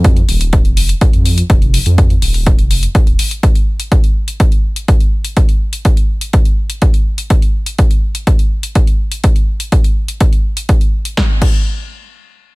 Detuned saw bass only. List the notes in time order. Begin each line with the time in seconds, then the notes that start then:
Already playing: F2
0.29 D#1
0.65 F1
1.14 F2
1.50 F1
1.86 F2
2.22 D#1
2.59 F1
3.07 D#1